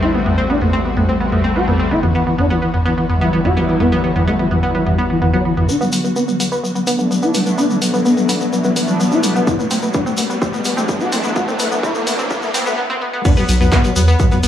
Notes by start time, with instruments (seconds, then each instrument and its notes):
Already playing: analog synth bass A1, synth drone D3 F#4, analog synth pad G3 A3 C4
0.02 synth arpeggio sound C4, analog synth lead E4
0.14 analog synth lead A3, synth arpeggio sound B3
0.26 analog synth lead A3, synth arpeggio sound B3, mid tom
0.38 analog synth lead A3, synth arpeggio sound C4
0.50 synth arpeggio sound B3, analog synth lead D4
0.61 analog synth lead A3, synth arpeggio sound B3, mid tom
0.73 analog synth lead A3, synth arpeggio sound C4
0.85 synth arpeggio sound B3
0.97 analog synth lead A3, synth arpeggio sound B3, mid tom
1.09 analog synth lead A3, synth arpeggio sound C4
1.20 analog synth pad G3 A3 C4, synth arpeggio sound B3
1.32 analog synth lead A3, synth arpeggio sound B3, mid tom
1.44 analog synth pad G3 A3 C4, analog synth lead A3, synth arpeggio sound C4
1.56 synth arpeggio sound B3, analog synth lead F#4
1.68 analog synth lead A3, synth arpeggio sound B3, mid tom
1.79 analog synth lead A3, synth arpeggio sound C4
1.91 analog synth bass G1, synth arpeggio sound B3, analog synth lead E4
2.03 analog synth lead E3, synth arpeggio sound B3, mid tom
2.15 analog synth lead E3, synth arpeggio sound B3
2.27 analog synth lead E3, synth arpeggio sound B3
2.38 synth arpeggio sound B3, analog synth lead D4, mid tom
2.50 analog synth lead E3, synth arpeggio sound B3
2.62 analog synth lead E3, synth arpeggio sound B3
2.74 synth arpeggio sound B3, mid tom
2.86 analog synth lead E3, synth arpeggio sound B3
2.97 analog synth lead E3, synth arpeggio sound B3
3.09 analog synth pad F#3 G3 E4, synth arpeggio sound B3, mid tom
3.21 analog synth lead E3, synth arpeggio sound B3
3.33 analog synth lead E3, analog synth pad F#3 G3 E4, synth arpeggio sound B3
3.45 synth arpeggio sound B3, analog synth lead F#4, mid tom
3.56 analog synth lead E3, synth arpeggio sound B3
3.68 analog synth lead E3, synth arpeggio sound B3
3.80 analog synth lead B3, synth arpeggio sound B3, mid tom
3.92 analog synth lead E3, synth arpeggio sound B3
4.04 analog synth lead E3, synth arpeggio sound B3
4.16 analog synth lead E3, synth arpeggio sound B3, mid tom
4.27 analog synth lead A3, synth arpeggio sound B3
4.39 analog synth lead E3, synth arpeggio sound B3
4.51 analog synth lead E3, synth arpeggio sound B3, mid tom
4.63 synth arpeggio sound B3
4.75 analog synth lead E3, synth arpeggio sound B3
4.86 analog synth lead E3, synth arpeggio sound B3, mid tom
4.98 synth arpeggio sound B3
5.10 analog synth lead E3, analog synth pad F#3 G3 E4, synth arpeggio sound B3
5.22 analog synth lead E3, synth arpeggio sound B3, mid tom
5.34 analog synth lead F#3, synth arpeggio sound B3
5.45 analog synth lead E3, synth arpeggio sound B3
5.57 analog synth lead E3, synth arpeggio sound B3, mid tom
5.69 synth drone B2 F#3, synth arpeggio sound B3, analog synth lead D4, mid tom, riser, shaker
5.81 analog synth lead F#3, synth arpeggio sound B3, shaker
5.92 analog synth bass B1, analog synth lead F#3, synth arpeggio sound B3, open hi-hat, shaker
6.04 analog synth lead F#3, synth arpeggio sound B3, mid tom, shaker
6.16 synth arpeggio sound B3, analog synth lead B3, shaker
6.28 analog synth lead F#3, synth arpeggio sound B3, shaker
6.40 analog synth bass E2, analog synth lead F#3, synth arpeggio sound B3, mid tom, open hi-hat, shaker
6.52 synth arpeggio sound B3, shaker
6.64 analog synth lead F#3, synth arpeggio sound B3, mid tom, shaker
6.75 analog synth lead F#3, synth arpeggio sound B3, mid tom, shaker
6.87 analog synth bass B1, analog synth pad A3 B3 D4, synth arpeggio sound B3, open hi-hat, shaker
6.99 analog synth lead F#3, synth arpeggio sound B3, shaker
7.11 analog synth lead F#3, analog synth pad A3 B3 D4, synth arpeggio sound B3, mid tom, shaker
7.22 synth arpeggio sound B3, analog synth lead E4, shaker
7.34 analog synth bass B1, analog synth lead F#3, synth arpeggio sound B3, open hi-hat, mid tom, shaker
7.46 analog synth lead F#3, synth arpeggio sound B3, mid tom, shaker
7.58 synth arpeggio sound B3, analog synth lead D4, mid tom, shaker
7.70 analog synth lead F#3, synth arpeggio sound B3, shaker
7.82 analog synth bass B1, analog synth lead F#3, synth arpeggio sound B3, mid tom, open hi-hat, shaker
7.94 analog synth lead F#3, synth arpeggio sound B3, shaker
8.05 synth arpeggio sound B3, analog synth lead B3, shaker
8.17 analog synth lead F#3, synth arpeggio sound B3, mid tom, shaker
8.29 analog synth bass B1, analog synth lead F#3, synth arpeggio sound B3, open hi-hat, mid tom, shaker
8.41 synth arpeggio sound B3, shaker
8.53 analog synth lead F#3, synth arpeggio sound B3, mid tom, shaker
8.64 analog synth lead F#3, synth arpeggio sound B3, shaker
8.76 analog synth bass B1, analog synth pad A3 B3 D4, synth arpeggio sound B3, open hi-hat, shaker
8.88 analog synth lead F#3, synth arpeggio sound B3, mid tom, shaker
9.00 analog synth lead F#3, analog synth pad A3 B3 D4, synth arpeggio sound B3, shaker
9.12 synth arpeggio sound B3, analog synth lead E4, shaker
9.23 analog synth bass A1, analog synth lead F#3, synth arpeggio sound B3, mid tom, open hi-hat, shaker
9.35 analog synth lead F#3, synth arpeggio sound B3, shaker
9.47 synth arpeggio sound B3, analog synth lead E4, kick, shaker
9.59 analog synth lead A3, synth arpeggio sound B3, mid tom, shaker
9.71 analog synth bass D2, analog synth lead A3, synth arpeggio sound C4, open hi-hat, mid tom, shaker
9.82 analog synth lead A3, synth arpeggio sound B3, shaker
9.94 synth arpeggio sound B3, analog synth lead D4, kick, mid tom, shaker
10.06 analog synth lead A3, synth arpeggio sound C4, shaker
10.17 analog synth bass F#2, analog synth lead A3, synth arpeggio sound B3, open hi-hat, mid tom, shaker
10.30 synth arpeggio sound B3, mid tom, shaker
10.41 analog synth lead A3, synth arpeggio sound C4, kick, shaker
10.53 analog synth lead A3, synth arpeggio sound B3, shaker
10.64 analog synth bass D2, analog synth pad E3 F#3 D4, synth arpeggio sound B3, mid tom, open hi-hat, shaker
10.77 analog synth lead A3, synth arpeggio sound C4, shaker
10.89 analog synth pad E3 F#3 D4, analog synth lead A3, synth arpeggio sound B3, kick, shaker
11.00 synth arpeggio sound B3, analog synth lead F#4, mid tom, shaker
11.12 analog synth bass D2, analog synth lead A3, synth arpeggio sound C4, open hi-hat, mid tom, shaker
11.24 analog synth lead A3, synth arpeggio sound B3, shaker
11.36 synth arpeggio sound B3, analog synth lead F#4, kick, mid tom, shaker
11.48 analog synth lead A3, synth arpeggio sound C4, shaker
11.59 analog synth bass D2, analog synth lead A3, synth arpeggio sound B3, open hi-hat, mid tom, shaker
11.72 analog synth lead A3, synth arpeggio sound B3, mid tom, shaker
11.83 synth arpeggio sound C4, analog synth lead E4, kick, shaker
11.95 analog synth lead A3, synth arpeggio sound B3, mid tom, shaker
12.07 analog synth bass D2, analog synth lead A3, synth arpeggio sound B3, mid tom, open hi-hat, shaker
12.19 synth arpeggio sound C4, shaker
12.30 analog synth lead A3, synth arpeggio sound B3, kick, mid tom, shaker
12.37 mid tom
12.42 analog synth lead A3, synth arpeggio sound B3, mid tom, shaker
12.48 mid tom
12.54 analog synth bass D2, synth arpeggio sound C4, open hi-hat, mid tom, shaker
12.60 mid tom
12.66 analog synth pad E3 F#3 D4, analog synth lead A3, synth arpeggio sound B3, mid tom, shaker
12.72 mid tom
12.78 synth arpeggio sound B3
12.90 synth arpeggio sound C4
13.01 synth arpeggio sound B3
13.13 synth arpeggio sound B3
13.25 synth arpeggio sound B3 B4, analog synth lead D4, kick, mid tom, crash, shaker
13.36 analog synth lead F#3, synth arpeggio sound B3 B4, snare, shaker
13.49 analog synth bass B1, analog synth lead F#3, synth arpeggio sound B3 B4, open hi-hat, shaker
13.61 analog synth lead F#3, synth arpeggio sound B3 B4, mid tom, shaker
13.72 synth arpeggio sound B3 B4, analog synth lead B3, kick, snare, clap, shaker
13.84 analog synth lead F#3, synth arpeggio sound B3 B4, closed hi-hat, shaker
13.96 analog synth bass E2, analog synth lead F#3, synth arpeggio sound B3 B4, mid tom, open hi-hat, shaker
14.08 synth arpeggio sound B3 B4, shaker
14.19 analog synth lead F#3, synth arpeggio sound B3 B4, kick, shaker
14.31 analog synth lead F#3, synth arpeggio sound B3 B4, snare, mid tom, shaker
14.43 analog synth bass B1, analog synth pad A3 D4, synth arpeggio sound B3 B4, open hi-hat, shaker